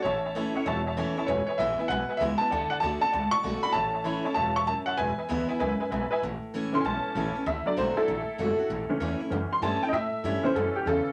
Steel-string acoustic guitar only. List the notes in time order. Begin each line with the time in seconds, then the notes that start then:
0.05 A2
0.35 E3 A3 C#4 E4
0.55 C#4 E4
0.66 E2
0.97 E3 A3 C#4 E4
1.17 C#4 E4
1.28 E2
1.59 E3 G#3 B3 E4
1.78 B3 E4
1.90 B2
2.20 E3 G#3 B3 E4
2.41 B3 E4
2.52 D3
2.82 D3 A3 D4 F#4
3.02 D4 F#4
3.13 A2
3.43 D3 A3 D4 F#4
3.63 D4 F#4
3.74 A2
4.04 E3 A3 C#4 E4
4.25 C#4 E4
4.36 G2
4.67 F#2
4.97 E2
5.29 E3 G#3 B3 E4
5.49 B3 E4
5.60 F#2
5.92 G#2
6.23 A2
6.54 E3 A3 C#4 E4
6.74 C#4 E4
6.85 E2
7.15 E3 A3 C#4 E4
7.35 C#4 E4
7.46 D3
7.77 D3 A3 D4 F#4
7.96 D4 F#4
8.08 A2
8.38 D3 A3 D4 F#4
8.59 D4 F#4
8.70 A2
9.00 E3 A3 C#4 E4
9.20 C#4 E4
9.32 E2
9.62 E3 A3 C#4 E4
9.82 C#4 E4
9.93 A2
10.24 E3 A3 C#4 E4
10.45 C#4 E4
10.56 B2
10.87 C#3